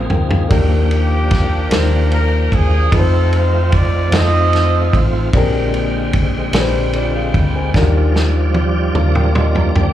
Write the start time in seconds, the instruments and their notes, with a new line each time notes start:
Already playing: upright piano A#2 C4 D#4 F4 G#4 A#4 C5 F5, tonewheel organ F3 A#3 C4 G#4
0.10 fingered electric bass D2, upright piano A#4 G5, floor tom
0.30 upright piano G#4 F5, floor tom
0.49 fingered electric bass D#2, upright piano D#3 A#3 D4 G4 A#4, tonewheel organ D4, kick, ride
0.53 tonewheel organ G5
0.91 horn section A#3 D4 G4, ride
1.31 kick, snare, ride
1.69 fingered electric bass D#2, upright piano D#3 A#3 D4 G4 C5, horn section A#4, snare, ride
2.12 horn section A#4, ride
2.52 fingered electric bass D#2, horn section G#4, kick, ride
2.90 fingered electric bass F2, tonewheel organ A3 C4 F4, upright piano C4 D#4 F4 A4 B4, horn section C4 D#4 A4, kick, ride
2.99 upright piano C5
3.33 horn section C5, ride
3.72 horn section D5, kick, ride
4.12 fingered electric bass F2, upright piano C4 D#4 F4 A4 C5, horn section A4 C5 D#5, snare, ride
4.53 snare, ride
4.93 fingered electric bass A1, kick, ride
5.33 fingered electric bass A#1, upright piano A#2 C4 D4 G4 G#4 A#4, tonewheel organ D3 G#3 G5, kick, ride
5.74 ride
6.13 kick, ride
6.53 fingered electric bass A#1, upright piano C4 D4 G4 G#4 B4, snare, ride
6.62 upright piano C5
6.93 upright piano F4 D5, ride
7.15 upright piano G#4 F5
7.34 fingered electric bass D2, kick, ride
7.55 upright piano C5 G#5
7.74 fingered electric bass D#2, upright piano D#3 D4 D#4 F4 F#4 A#4, tonewheel organ F3 G3 F4 D5, kick, snare
7.82 upright piano G4
8.16 snare
8.54 tonewheel organ G4, high tom
8.95 fingered electric bass D#2, tonewheel organ A#3 D4 F4, upright piano F5, mid tom
9.15 upright piano A#4 G5, mid tom
9.35 upright piano D#5 C6, mid tom
9.55 upright piano D5 A#5, floor tom
9.75 fingered electric bass D2, upright piano A#4 G5, floor tom